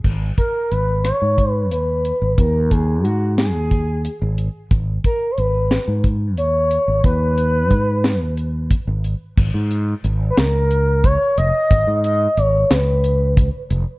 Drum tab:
CC |x------|-------|-------|-------|
HH |-xxxxxx|xxxxxxx|xxxxxxx|xxxxxxx|
SD |---r---|---o---|---o---|---o---|
BD |oo--o--|oo--o--|oo--o--|o-o--o-|

CC |x------|-------|
HH |-xxxxxx|xxxxxxx|
SD |---o---|---o---|
BD |o----o-|o----o-|